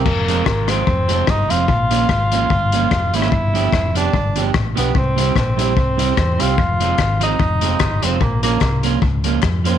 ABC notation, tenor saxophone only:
X:1
M:4/4
L:1/8
Q:"Swing" 1/4=147
K:Fm
V:1 name="Tenor saxophone"
B,3 C3 E F- | F6- F =E- | =E3 =D3 z =B, | C2 C4- C F- |
F3 E4 C | B, B,2 z4 C |]